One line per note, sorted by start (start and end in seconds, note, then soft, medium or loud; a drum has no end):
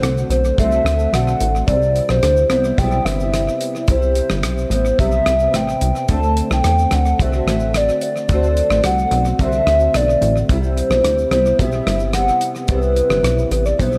0.00 0.25 C2 loud
0.00 0.56 D3 medium
0.00 0.58 A3 medium
0.00 0.59 C4 medium
0.00 0.59 F#4 medium
0.00 0.27 C5 loud
0.00 cross-stick medium
0.00 closed hi-hat medium
0.00 shaker medium
0.18 shaker medium
0.30 0.52 B1 loud
0.30 0.57 C5 medium
0.30 closed hi-hat medium
0.30 shaker medium
0.45 shaker medium
0.58 0.80 C2 loud
0.58 1.11 D3 medium
0.58 1.13 A3 medium
0.58 1.15 C4 medium
0.58 1.14 F#4 medium
0.58 1.16 E5 loud
0.58 kick medium
0.58 closed hi-hat medium
0.58 shaker medium
0.71 shaker medium
0.85 1.07 D2 medium
0.85 cross-stick medium
0.85 closed hi-hat medium
0.85 shaker medium
0.99 shaker medium
1.12 1.35 B1 medium
1.12 1.66 D3 medium
1.12 1.67 A3 medium
1.12 2.51 C4 medium
1.12 1.68 F#4 medium
1.12 1.55 F#5 loud
1.12 cross-stick medium
1.12 closed hi-hat medium
1.12 shaker medium
1.28 shaker medium
1.40 1.63 A1 loud
1.40 closed hi-hat medium
1.40 shaker medium
1.55 shaker medium
1.66 2.01 C2 loud
1.66 2.50 C3 medium
1.66 2.51 G3 medium
1.66 2.49 E4 medium
1.66 2.11 D5 loud
1.66 kick loud
1.66 closed hi-hat medium
1.66 shaker medium
1.82 shaker medium
1.96 closed hi-hat medium
1.96 shaker soft
2.09 2.20 B1 medium
2.09 2.50 C5 loud
2.09 cross-stick medium
2.09 shaker medium
2.23 2.45 D2 medium
2.23 cross-stick medium
2.23 closed hi-hat medium
2.23 shaker medium
2.37 shaker medium
2.50 2.73 C2 medium
2.50 2.79 G3 soft
2.50 2.79 B3 soft
2.50 2.78 E4 medium
2.50 2.80 C5 medium
2.50 cross-stick medium
2.50 closed hi-hat soft
2.50 shaker medium
2.64 shaker medium
2.77 3.00 B1 loud
2.77 3.86 C3 medium
2.77 3.88 G3 medium
2.77 3.07 G5 loud
2.77 kick medium
2.77 closed hi-hat medium
2.77 shaker medium
2.81 3.90 B3 medium
2.81 3.89 E4 medium
2.91 shaker medium
3.05 3.49 G1 medium
3.05 3.61 E5 loud
3.05 cross-stick loud
3.05 closed hi-hat medium
3.05 shaker medium
3.20 shaker medium
3.34 cross-stick medium
3.34 closed hi-hat medium
3.34 shaker medium
3.48 shaker medium
3.61 closed hi-hat medium
3.61 shaker medium
3.75 shaker soft
3.88 4.21 C2 loud
3.88 4.71 C3 medium
3.88 4.72 G3 medium
3.88 4.69 E4 medium
3.88 4.68 C5 loud
3.88 kick loud
3.88 closed hi-hat medium
3.88 shaker medium
4.02 shaker medium
4.15 closed hi-hat medium
4.15 shaker medium
4.30 4.45 G1 medium
4.30 cross-stick medium
4.30 shaker medium
4.43 4.66 B1 medium
4.43 cross-stick loud
4.43 closed hi-hat medium
4.43 shaker medium
4.58 shaker medium
4.70 4.93 A1 medium
4.70 4.99 G3 soft
4.70 5.00 B3 soft
4.70 4.98 E4 medium
4.70 4.98 C5 medium
4.70 closed hi-hat medium
4.70 shaker medium
4.85 shaker medium
4.98 5.21 B1 medium
4.98 6.08 C3 medium
4.98 6.09 G3 medium
4.98 6.10 B3 medium
4.98 5.57 E5 loud
4.98 kick medium
4.98 closed hi-hat medium
4.98 shaker medium
5.03 6.11 E4 medium
5.11 shaker medium
5.26 5.48 C2 medium
5.26 cross-stick medium
5.26 closed hi-hat medium
5.26 shaker medium
5.39 shaker medium
5.53 5.76 A1 medium
5.53 5.96 G5 loud
5.53 cross-stick medium
5.53 closed hi-hat medium
5.53 shaker medium
5.69 shaker medium
5.81 5.92 C2 loud
5.81 closed hi-hat medium
5.81 shaker medium
5.96 6.04 G5 medium
5.96 shaker medium
6.09 6.42 D2 loud
6.09 7.16 D3 medium
6.09 7.19 A3 medium
6.09 7.21 C4 medium
6.09 6.49 A5 loud
6.09 kick loud
6.09 closed hi-hat medium
6.09 shaker medium
6.23 shaker medium
6.37 closed hi-hat medium
6.37 shaker soft
6.51 6.61 C2 medium
6.51 6.96 G5 loud
6.51 cross-stick medium
6.51 shaker medium
6.64 6.86 E2 medium
6.64 cross-stick medium
6.64 closed hi-hat medium
6.64 shaker medium
6.78 shaker medium
6.91 7.14 D2 medium
6.91 7.20 F#5 loud
6.91 cross-stick medium
6.91 closed hi-hat medium
6.91 shaker medium
7.05 shaker medium
7.18 7.41 C2 loud
7.18 8.28 D3 medium
7.18 8.29 A3 medium
7.18 8.31 C4 medium
7.18 kick medium
7.18 closed hi-hat medium
7.18 shaker medium
7.22 8.31 F#4 medium
7.22 7.79 E5 loud
7.33 shaker medium
7.46 7.90 A1 loud
7.46 cross-stick loud
7.46 closed hi-hat medium
7.46 shaker medium
7.60 shaker medium
7.74 8.02 D5 loud
7.74 cross-stick medium
7.74 closed hi-hat medium
7.74 shaker medium
7.89 shaker medium
8.01 8.81 D5 loud
8.01 closed hi-hat medium
8.01 shaker medium
8.16 shaker medium
8.29 8.62 D2 loud
8.29 9.12 D3 medium
8.29 9.12 A3 medium
8.29 9.13 C4 medium
8.29 9.10 F#4 medium
8.29 kick loud
8.29 closed hi-hat medium
8.29 shaker medium
8.43 shaker medium
8.57 closed hi-hat medium
8.57 shaker medium
8.70 8.81 A1 loud
8.70 cross-stick medium
8.70 shaker medium
8.84 9.06 C2 medium
8.84 9.36 F#5 loud
8.84 cross-stick loud
8.84 closed hi-hat medium
8.84 shaker medium
8.99 shaker medium
9.11 9.33 B1 loud
9.11 9.40 C4 soft
9.11 9.39 F#4 soft
9.11 closed hi-hat medium
9.11 shaker medium
9.15 9.39 A3 soft
9.25 shaker medium
9.39 9.61 C2 loud
9.39 10.49 D3 medium
9.39 10.50 A3 medium
9.39 11.34 C4 medium
9.39 9.98 E5 loud
9.39 kick medium
9.39 closed hi-hat medium
9.39 shaker medium
9.44 10.51 F#4 medium
9.52 shaker medium
9.67 9.89 D2 medium
9.67 cross-stick loud
9.67 closed hi-hat medium
9.67 shaker medium
9.80 shaker medium
9.94 10.16 B1 medium
9.94 10.36 D5 loud
9.94 cross-stick medium
9.94 closed hi-hat medium
9.94 shaker medium
10.10 shaker medium
10.22 10.44 A1 medium
10.22 closed hi-hat medium
10.22 shaker medium
10.37 shaker soft
10.49 10.82 C2 loud
10.49 11.32 C3 medium
10.49 11.35 G3 medium
10.49 11.32 E4 medium
10.49 11.29 C5 loud
10.49 kick loud
10.49 closed hi-hat medium
10.49 shaker medium
10.63 shaker medium
10.77 closed hi-hat medium
10.77 shaker medium
10.90 11.01 B1 medium
10.90 cross-stick medium
10.90 shaker medium
11.03 11.26 D2 medium
11.03 cross-stick medium
11.03 closed hi-hat medium
11.03 shaker medium
11.18 shaker medium
11.31 11.53 C2 loud
11.31 11.60 B3 soft
11.31 11.59 E4 medium
11.31 11.57 C5 medium
11.31 cross-stick medium
11.31 closed hi-hat soft
11.31 shaker medium
11.35 11.59 G3 soft
11.46 shaker medium
11.59 11.81 B1 loud
11.59 12.13 C3 medium
11.59 12.16 G3 medium
11.59 12.17 B3 medium
11.59 12.18 E4 medium
11.59 12.11 E5 loud
11.59 kick medium
11.59 closed hi-hat medium
11.59 shaker medium
11.72 shaker medium
11.87 12.31 G1 medium
11.87 cross-stick medium
11.87 closed hi-hat medium
11.87 shaker medium
11.99 shaker medium
12.13 12.67 C3 medium
12.13 12.70 G3 medium
12.13 12.71 B3 medium
12.13 12.52 F#5 medium
12.13 cross-stick medium
12.13 closed hi-hat medium
12.13 shaker medium
12.18 12.73 E4 medium
12.28 shaker medium
12.41 closed hi-hat medium
12.41 shaker medium
12.55 shaker medium
12.68 13.02 C2 loud
12.68 13.77 C3 medium
12.68 13.79 G3 medium
12.68 13.81 B3 medium
12.68 13.48 B4 loud
12.68 kick loud
12.68 closed hi-hat medium
12.68 shaker medium
12.73 13.83 E4 medium
12.82 shaker medium
12.96 closed hi-hat medium
12.96 shaker medium
13.09 13.21 G1 medium
13.09 cross-stick medium
13.09 shaker medium
13.23 13.46 B1 medium
13.23 cross-stick medium
13.23 closed hi-hat medium
13.23 shaker medium
13.38 shaker medium
13.51 13.73 A1 medium
13.51 13.67 B4 medium
13.51 closed hi-hat medium
13.51 shaker medium
13.65 13.79 D5 medium
13.65 shaker medium
13.78 13.98 B1 loud
13.78 13.98 C3 medium
13.78 13.98 G3 medium
13.78 13.98 B3 medium
13.78 13.98 C5 medium
13.78 kick medium
13.78 closed hi-hat medium
13.78 shaker medium
13.83 13.98 E4 medium
13.92 shaker medium